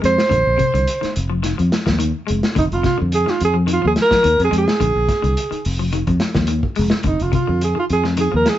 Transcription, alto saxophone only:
0.05 1.12 C5 loud
2.59 2.65 D#4 medium
2.73 2.84 F4 medium
2.86 2.98 F4 medium
3.15 3.31 G#4 loud
3.30 3.41 F4 medium
3.45 3.56 G#4 loud
3.73 3.84 F4 medium
3.87 3.92 G#4 loud
4.02 4.39 A#4 loud
4.44 4.54 G#4 medium
4.58 5.64 G#4 medium
7.07 7.24 D#4 medium
7.22 7.34 F4 medium
7.34 7.60 F4 medium
7.64 7.77 G#4 medium
7.79 7.85 F4 medium
7.92 8.05 G#4 medium
8.21 8.33 G#4 medium
8.36 8.51 A#4 medium
8.49 8.59 G#4 loud

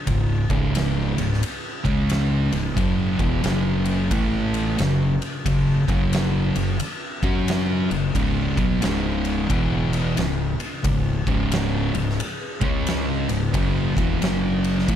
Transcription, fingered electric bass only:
0.07 0.47 C#1 medium
0.50 1.13 C#1 loud
1.18 1.40 C#1 medium
1.85 2.48 C#2 medium
2.53 2.76 C#1 medium
2.77 3.17 F#1 medium
3.19 3.42 E1 medium
3.45 4.08 F#1 medium
4.12 4.75 A1 medium
4.80 5.19 F#1 medium
5.46 5.86 F#1 medium
5.89 6.52 F#1 medium
6.56 6.79 F#1 medium
7.23 7.87 F#2 medium
7.91 8.14 F#1 medium
8.15 8.55 C#1 medium
8.58 8.81 B1 medium
8.83 9.47 C#1 medium
9.50 10.14 E1 medium
10.18 10.58 C#1 medium
10.84 11.24 C#1 medium
11.27 11.91 C#1 medium
11.94 12.18 C#1 medium
12.62 13.25 C#2 medium
13.28 13.52 C#1 medium
13.54 13.94 F#1 medium
13.97 14.20 E1 loud
14.21 14.84 F#1 medium
14.88 14.96 A1 loud

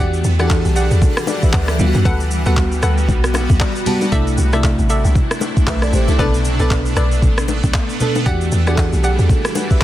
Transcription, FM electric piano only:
0.00 0.30 E3 medium
0.00 0.31 D4 medium
0.00 0.31 F#4 medium
0.00 0.31 G4 medium
0.39 1.21 E3 medium
0.39 1.22 D4 medium
0.39 1.22 F#4 medium
0.39 0.46 G#4 medium
0.47 1.25 A4 loud
1.29 1.43 A4 medium
1.29 1.43 D5 medium
1.44 1.54 B4 medium
1.44 1.54 E5 medium
1.54 1.69 B4 medium
1.54 1.68 F#5 medium
1.69 1.94 A4 medium
1.69 1.94 D5 medium
1.79 2.31 G3 medium
1.79 2.31 B3 medium
1.79 1.88 F4 medium
1.87 2.35 F#4 loud
2.46 3.28 G3 medium
2.46 3.29 B3 medium
2.46 3.29 F#4 loud
3.61 3.85 D5 medium
3.86 4.08 G3 medium
3.86 4.08 B3 medium
3.86 4.09 F#4 loud
3.86 4.11 A5 medium
4.12 4.44 C3 medium
4.12 4.44 A3 medium
4.12 4.45 D4 medium
4.12 4.45 E4 loud
4.53 5.35 C3 medium
4.53 5.35 A3 medium
4.53 5.36 D4 medium
4.53 5.36 E4 medium
5.68 5.82 B4 medium
5.68 5.82 E5 medium
5.83 5.94 A4 medium
5.83 5.93 D5 medium
5.94 6.08 G4 medium
5.94 6.08 C5 medium
6.09 6.34 E4 medium
6.09 6.20 A4 medium
6.19 6.51 B2 medium
6.19 6.51 B3 medium
6.19 6.52 D4 medium
6.19 6.52 A4 loud
6.60 7.42 B2 medium
6.60 7.42 B3 medium
6.60 7.43 D4 medium
6.60 7.43 A4 loud
8.00 8.22 B2 medium
8.00 8.22 B3 medium
8.00 8.22 D4 medium
8.00 8.23 A4 loud
8.26 8.58 E3 medium
8.26 8.58 D4 medium
8.26 8.59 F#4 medium
8.26 8.59 G4 loud
8.67 9.49 E3 medium
8.67 9.49 D4 medium
8.67 9.30 F#4 medium
8.67 8.73 G#4 medium
8.75 9.34 A4 loud
9.57 9.71 B4 medium
9.57 9.70 F#5 medium
9.72 9.82 B4 medium
9.72 9.81 E5 medium

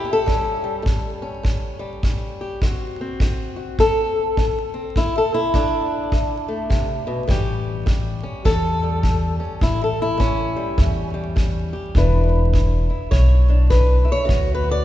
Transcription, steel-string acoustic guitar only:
0.00 0.23 A2 medium
0.00 0.28 G4 medium
0.05 0.25 C#4 soft
0.13 2.40 A4 medium
0.26 0.81 A2 medium
0.26 0.63 G3 soft
0.26 1.21 C#4 soft
0.64 1.78 G3 soft
0.83 1.39 A2 medium
1.22 2.59 C#4 soft
1.43 1.98 A2 medium
1.79 2.61 G3 soft
2.03 2.57 A2 medium
2.41 2.60 G4 soft
2.63 3.16 D3 medium
2.63 3.00 C4 soft
2.63 3.56 F#4 soft
3.01 4.73 C4 soft
3.21 3.75 D3 medium
3.56 3.80 F#4 soft
3.79 4.33 D3 medium
3.79 4.96 A4 loud
4.37 4.91 D3 medium
4.74 4.93 C4 soft
4.97 5.50 D3 medium
4.97 5.16 E4 medium
5.18 5.34 A4 medium
5.33 5.54 C4 soft
5.33 6.12 E4 medium
5.54 6.08 D3 medium
5.54 7.29 D4 medium
6.13 6.67 D3 medium
6.48 7.29 A3 soft
6.70 7.06 C3 medium
7.07 7.27 B2 medium
7.28 7.82 A2 medium
7.28 8.82 G3 soft
7.28 8.23 C#4 soft
7.28 8.45 G4 medium
7.86 8.41 A2 medium
8.23 9.39 C#4 soft
8.45 8.99 A2 medium
8.45 9.62 A4 loud
8.83 10.55 G3 soft
9.03 9.58 A2 medium
9.40 9.60 C#4 soft
9.62 10.16 A2 medium
9.62 9.82 E4 medium
9.84 10.01 A4 medium
10.02 10.79 E4 medium
10.17 10.73 A2 medium
10.17 11.95 C#4 medium
10.56 11.13 G3 soft
10.78 11.32 A2 medium
11.14 11.95 G3 soft
11.36 11.91 A2 medium
11.73 11.93 G4 soft
11.96 12.50 E2 medium
11.96 13.48 D4 soft
11.96 12.89 E4 soft
11.96 13.11 B4 soft
12.54 13.08 E2 medium
12.90 14.03 E4 soft
13.11 13.66 E2 medium
13.11 13.70 C#5 medium
13.49 14.27 D4 soft
13.70 14.25 E2 medium
13.70 14.09 B4 medium
14.05 14.26 E4 soft
14.12 14.50 C#5 medium
14.25 14.81 D3 medium
14.25 14.63 F#4 soft
14.55 14.71 B4 medium
14.64 14.85 F#4 soft
14.71 14.85 D5 medium

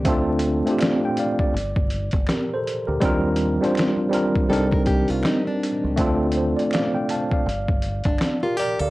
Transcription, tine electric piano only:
0.04 0.48 A3 loud
0.04 0.48 C4 loud
0.04 0.49 D4 loud
0.04 0.50 F4 loud
0.09 0.50 A4 loud
0.66 1.54 A3 medium
0.66 1.54 C4 medium
0.66 1.55 D4 medium
0.66 1.55 F4 medium
0.70 1.56 G4 medium
0.79 1.01 D5 medium
0.79 1.01 F5 medium
1.05 1.17 G5 medium
1.19 1.39 D5 medium
1.19 1.39 F5 medium
1.40 1.75 D5 medium
2.29 2.50 G4 medium
2.29 2.50 A#4 medium
2.54 2.88 A4 medium
2.54 2.87 C5 medium
2.87 3.23 G4 medium
2.87 3.04 A#4 medium
3.00 3.44 G3 loud
3.00 3.45 C4 loud
3.00 3.45 D4 loud
3.00 3.46 F4 loud
3.05 3.46 A#4 loud
3.61 4.02 G3 medium
3.61 4.02 C4 medium
3.61 4.03 D4 medium
3.61 4.04 F4 medium
3.66 4.04 C5 medium
4.09 4.47 G3 medium
4.09 4.49 C4 medium
4.09 4.49 D4 medium
4.09 4.50 F4 medium
4.14 4.50 A#4 loud
4.48 5.69 G3 medium
4.48 5.70 C4 medium
4.48 5.70 D4 medium
4.48 5.71 D#4 medium
4.53 5.72 A#4 loud
5.96 6.40 A3 loud
5.96 6.41 C4 loud
5.96 6.42 D4 loud
6.00 6.42 F4 loud
6.00 6.36 A4 loud
6.37 6.58 A4 medium
6.37 6.58 C5 medium
6.57 6.71 D5 medium
6.74 6.94 D5 medium
6.74 6.94 F5 medium
6.95 7.08 G5 medium
7.10 7.32 F5 medium
7.10 7.31 A5 medium
7.33 7.68 D5 medium
7.33 7.68 F5 medium
8.43 8.57 G4 medium
8.43 8.57 A#4 medium
8.60 8.80 A#4 medium
8.60 8.80 D5 medium
8.82 8.90 D5 medium
8.82 8.90 F5 medium

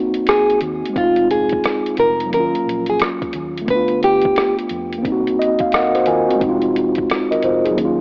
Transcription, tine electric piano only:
0.00 0.89 A#3 medium
0.00 0.92 C4 medium
0.00 0.94 D#4 medium
0.00 0.96 F#4 medium
0.89 2.26 G#3 medium
0.94 2.28 C4 medium
0.99 2.31 D#4 medium
1.03 2.33 F4 medium
2.25 3.62 F#3 medium
2.30 3.64 A#3 medium
2.35 3.67 C#4 medium
2.39 3.69 F4 medium
3.61 4.98 A3 medium
3.66 5.01 B3 medium
3.71 5.03 D4 medium
3.76 5.06 F4 medium
4.98 6.35 A#3 medium
5.03 5.70 C4 medium
5.07 5.73 D#4 medium
5.12 5.75 F#4 medium
5.40 5.59 D#5 medium
5.61 5.72 F5 medium
5.74 5.94 A#4 medium
5.74 5.94 D#5 medium
5.74 6.05 F#5 medium
5.95 6.07 F#4 medium
5.95 6.07 C5 medium
6.08 6.28 F4 medium
6.08 6.28 A#4 medium
6.08 6.39 G#5 medium
6.29 6.38 C4 medium
6.29 6.61 F#4 medium
6.35 7.72 G#3 medium
6.39 7.74 C4 medium
6.44 6.76 D#4 medium
6.49 6.78 F4 medium
7.31 7.43 A#4 medium
7.31 7.43 D#5 medium
7.44 7.64 F4 medium
7.44 7.64 C5 medium
7.65 7.98 D#4 medium
7.65 7.97 G#4 medium
7.71 8.01 F#3 medium
7.75 8.01 A#3 medium
7.80 8.01 C#4 medium
7.85 8.01 F4 medium

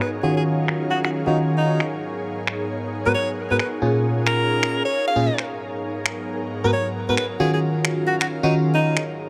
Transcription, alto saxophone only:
0.01 0.10 B4 medium
0.24 0.32 G#4 medium
0.37 0.43 G#4 medium
0.91 1.00 F#4 medium
1.05 1.10 F#4 medium
1.27 1.38 D#4 medium
1.58 1.86 D#4 medium
3.06 3.13 B4 medium
3.14 3.30 C#5 medium
3.51 3.56 B4 medium
3.60 3.68 B4 medium
4.26 4.82 A#4 medium
4.85 5.05 C#5 medium
5.07 5.44 F5 medium
6.64 6.71 B4 medium
6.73 6.88 C#5 medium
7.09 7.14 B4 medium
7.18 7.26 B4 medium
7.40 7.49 G#4 medium
7.54 7.59 G#4 medium
8.07 8.16 F#4 medium
8.21 8.26 F#4 medium
8.44 8.55 D#4 medium
8.74 9.02 D#4 medium

